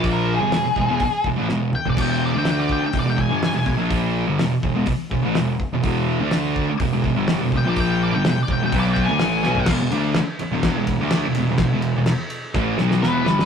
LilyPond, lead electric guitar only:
\new Staff \with { instrumentName = "Lead electric guitar" } { \time 4/4 \key d \lydian \tempo 4 = 125 ais'8 gis'2 r4 g''16 d''16 | g''16 g''16 d''16 g''16 g''16 d''16 g''16 g''16 d''16 g''16 gis''4~ gis''16 r16 | r1 | r2. r8 g''16 d''16 |
g''16 g''16 d''16 g''16 g''16 d''16 g''16 g''16 d''16 g''16 gis''4. | r1 | r2. b'4 | }